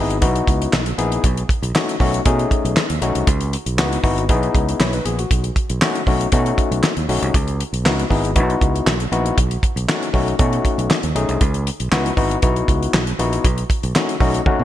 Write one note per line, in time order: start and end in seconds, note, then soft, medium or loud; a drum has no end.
0.00 0.24 G#1 medium
0.00 0.17 B3 medium
0.00 0.17 D#4 medium
0.00 0.17 E4 medium
0.00 0.17 G#4 loud
0.10 closed hi-hat medium
0.21 0.40 B1 medium
0.21 0.81 B3 medium
0.21 0.81 D#4 medium
0.21 0.82 E4 medium
0.21 0.82 F#4 loud
0.21 kick loud
0.21 closed hi-hat loud
0.36 closed hi-hat soft
0.47 0.66 C#2 medium
0.47 kick loud
0.47 closed hi-hat medium
0.62 closed hi-hat medium
0.73 0.91 B1 loud
0.73 snare loud
0.73 clap medium
0.86 closed hi-hat medium
0.98 1.17 A#1 medium
0.98 1.24 B3 medium
0.98 1.24 D#4 medium
0.98 1.24 E4 medium
0.98 1.24 G#4 loud
0.98 closed hi-hat medium
1.12 closed hi-hat medium
1.24 1.42 B1 loud
1.24 kick loud
1.24 closed hi-hat loud
1.37 closed hi-hat medium
1.49 kick loud
1.49 closed hi-hat medium
1.62 1.71 B1 medium
1.62 closed hi-hat medium
1.75 1.95 A3 medium
1.75 1.95 C#4 medium
1.75 1.95 D#4 medium
1.75 1.95 F#4 medium
1.75 snare loud
1.75 clap loud
1.89 closed hi-hat medium
2.00 2.18 B1 loud
2.00 2.20 A3 medium
2.00 2.20 C#4 medium
2.00 2.20 D#4 medium
2.00 2.21 F#4 loud
2.00 kick medium
2.00 open hi-hat medium
2.14 closed hi-hat medium
2.25 2.44 B2 loud
2.25 2.85 A3 medium
2.25 2.85 C#4 medium
2.25 2.85 D#4 medium
2.25 2.85 G#4 loud
2.25 kick loud
2.25 closed hi-hat loud
2.39 closed hi-hat soft
2.51 kick loud
2.51 closed hi-hat medium
2.65 2.73 B1 medium
2.65 closed hi-hat medium
2.77 snare loud
2.77 clap medium
2.90 2.99 D#2 medium
2.90 closed hi-hat medium
3.02 3.12 B1 loud
3.02 3.27 A3 medium
3.02 3.27 C#4 medium
3.02 3.28 D#4 medium
3.02 3.28 F#4 loud
3.02 closed hi-hat medium
3.15 3.24 C2 medium
3.15 closed hi-hat medium
3.27 3.55 C#2 loud
3.27 kick loud
3.27 closed hi-hat loud
3.41 closed hi-hat medium
3.53 closed hi-hat medium
3.66 3.78 B1 medium
3.66 closed hi-hat medium
3.78 3.96 C#2 medium
3.78 3.98 B3 medium
3.78 3.98 D#4 medium
3.78 3.98 E4 medium
3.78 3.98 F#4 medium
3.78 snare loud
3.78 clap loud
3.93 closed hi-hat medium
4.03 4.31 G#1 loud
4.03 4.23 B3 medium
4.03 4.24 D#4 medium
4.03 4.24 E4 medium
4.03 4.24 F#4 loud
4.03 kick medium
4.03 open hi-hat medium
4.18 closed hi-hat medium
4.29 4.47 B1 medium
4.29 4.80 B3 loud
4.29 4.80 D#4 medium
4.29 4.79 E4 medium
4.29 4.80 G#4 loud
4.29 kick loud
4.29 closed hi-hat medium
4.43 closed hi-hat soft
4.55 4.73 C#2 loud
4.55 kick loud
4.55 closed hi-hat medium
4.69 closed hi-hat medium
4.80 4.98 B1 loud
4.80 4.93 E4 medium
4.80 4.93 C#5 medium
4.80 snare loud
4.80 clap medium
4.93 5.05 D#4 medium
4.93 5.05 B4 medium
4.93 closed hi-hat medium
5.05 5.24 A#1 medium
5.05 5.19 B3 medium
5.05 5.18 G#4 medium
5.05 closed hi-hat medium
5.19 5.43 F#4 medium
5.19 closed hi-hat soft
5.31 5.49 B1 loud
5.31 kick loud
5.31 closed hi-hat loud
5.44 closed hi-hat medium
5.56 kick loud
5.56 closed hi-hat medium
5.70 5.78 B1 medium
5.70 closed hi-hat medium
5.81 6.01 A3 medium
5.81 6.02 C#4 medium
5.81 6.02 D#4 medium
5.81 6.02 F#4 loud
5.81 snare loud
5.81 clap loud
5.95 closed hi-hat medium
6.07 6.25 B1 medium
6.07 6.27 A3 medium
6.07 6.27 C#4 medium
6.07 6.27 D#4 medium
6.07 6.27 F#4 loud
6.07 kick medium
6.07 open hi-hat medium
6.21 closed hi-hat medium
6.32 6.51 B2 medium
6.32 6.92 A3 loud
6.32 6.92 C#4 medium
6.32 6.92 D#4 medium
6.32 6.92 F#4 loud
6.32 kick loud
6.32 closed hi-hat loud
6.46 closed hi-hat soft
6.58 kick loud
6.58 closed hi-hat medium
6.71 6.80 B1 medium
6.71 closed hi-hat medium
6.83 snare loud
6.83 clap medium
6.97 7.05 D#2 medium
6.97 closed hi-hat medium
7.09 7.18 B1 medium
7.09 7.34 A3 medium
7.09 7.34 C#4 medium
7.09 7.34 D#4 medium
7.09 7.34 F#4 medium
7.09 open hi-hat medium
7.22 7.31 C2 medium
7.22 closed hi-hat medium
7.34 7.62 C#2 loud
7.34 kick loud
7.34 closed hi-hat loud
7.48 closed hi-hat soft
7.60 closed hi-hat medium
7.73 7.85 B1 medium
7.73 closed hi-hat medium
7.85 8.03 C#2 loud
7.85 8.05 B3 medium
7.85 8.05 D#4 medium
7.85 8.05 E4 medium
7.85 8.05 F#4 medium
7.85 snare loud
7.85 clap loud
7.99 closed hi-hat medium
8.10 8.38 G#1 medium
8.10 8.30 B3 medium
8.10 8.30 D#4 medium
8.10 8.30 E4 medium
8.10 8.31 G#4 loud
8.10 kick medium
8.10 open hi-hat medium
8.25 closed hi-hat medium
8.36 8.54 B1 loud
8.36 8.95 B3 loud
8.36 8.95 D#4 medium
8.36 8.95 E4 medium
8.36 8.95 F#4 loud
8.36 kick loud
8.36 closed hi-hat medium
8.50 closed hi-hat soft
8.61 8.80 C#2 medium
8.61 kick loud
8.61 closed hi-hat medium
8.76 closed hi-hat medium
8.86 9.05 B1 loud
8.86 snare loud
8.86 clap medium
9.00 closed hi-hat medium
9.12 9.30 A#1 loud
9.12 9.37 B3 medium
9.12 9.37 D#4 medium
9.12 9.38 E4 medium
9.12 9.38 F#4 loud
9.12 closed hi-hat medium
9.26 closed hi-hat medium
9.38 9.56 B1 loud
9.38 kick loud
9.38 closed hi-hat loud
9.51 closed hi-hat medium
9.63 kick loud
9.63 closed hi-hat medium
9.76 9.85 B1 medium
9.76 closed hi-hat medium
9.88 10.08 A3 medium
9.88 10.08 C#4 medium
9.88 10.08 D#4 medium
9.88 10.09 F#4 medium
9.88 snare loud
9.88 clap loud
10.03 closed hi-hat medium
10.13 10.32 B1 medium
10.13 10.34 A3 medium
10.13 10.34 C#4 medium
10.13 10.34 D#4 medium
10.13 10.34 F#4 medium
10.13 kick medium
10.13 open hi-hat medium
10.28 closed hi-hat medium
10.39 10.58 B2 loud
10.39 10.98 A3 medium
10.39 10.98 C#4 medium
10.39 10.99 D#4 medium
10.39 10.99 F#4 loud
10.39 kick loud
10.39 closed hi-hat medium
10.53 closed hi-hat soft
10.65 kick loud
10.65 closed hi-hat medium
10.78 10.87 B1 medium
10.78 closed hi-hat medium
10.90 snare loud
10.90 clap medium
11.03 11.12 D#2 medium
11.03 closed hi-hat medium
11.15 11.25 B1 medium
11.15 11.41 A3 medium
11.15 11.41 C#4 medium
11.15 11.41 D#4 medium
11.15 11.41 G#4 loud
11.15 closed hi-hat medium
11.29 11.37 C2 medium
11.29 closed hi-hat medium
11.41 11.69 C#2 loud
11.41 kick loud
11.41 closed hi-hat loud
11.54 closed hi-hat medium
11.67 closed hi-hat medium
11.80 11.89 B1 medium
11.80 closed hi-hat medium
11.92 12.10 C#2 loud
11.92 12.12 B3 medium
11.92 12.12 D#4 medium
11.92 12.12 E4 medium
11.92 12.12 F#4 loud
11.92 snare loud
11.92 clap loud
12.06 closed hi-hat medium
12.17 12.35 G#1 loud
12.17 12.37 B3 medium
12.17 12.37 D#4 medium
12.17 12.37 E4 medium
12.17 12.38 F#4 loud
12.17 kick medium
12.17 open hi-hat medium
12.31 closed hi-hat medium
12.42 12.61 B1 medium
12.42 13.02 B3 medium
12.42 13.02 D#4 medium
12.42 13.02 E4 medium
12.42 13.02 F#4 loud
12.42 kick loud
12.42 closed hi-hat medium
12.56 closed hi-hat soft
12.68 12.86 C#2 medium
12.68 kick loud
12.68 closed hi-hat medium
12.83 closed hi-hat medium
12.94 13.12 B1 loud
12.94 snare loud
12.94 clap medium
13.07 closed hi-hat medium
13.19 13.37 A#1 medium
13.19 13.44 B3 medium
13.19 13.45 D#4 medium
13.19 13.45 E4 medium
13.19 13.45 F#4 loud
13.19 closed hi-hat medium
13.33 closed hi-hat medium
13.44 13.63 B1 loud
13.44 kick loud
13.44 closed hi-hat loud
13.58 closed hi-hat soft
13.70 kick loud
13.70 closed hi-hat medium
13.83 13.92 B1 medium
13.83 closed hi-hat medium
13.95 14.15 A3 medium
13.95 14.15 C#4 medium
13.95 14.15 D#4 medium
13.95 14.16 F#4 medium
13.95 snare loud
13.95 clap loud
14.09 closed hi-hat medium
14.20 14.39 B1 loud
14.20 14.40 A3 medium
14.20 14.41 C#4 medium
14.20 14.41 D#4 medium
14.20 14.41 F#4 loud
14.20 14.44 D#5 medium
14.20 kick medium
14.20 open hi-hat medium
14.34 closed hi-hat medium
14.46 14.64 A3 medium
14.46 14.64 C#4 medium
14.46 14.64 D#4 medium
14.46 14.64 F#4 loud
14.46 14.64 F#5 medium
14.46 kick loud
14.46 high tom medium
14.59 14.64 B2 loud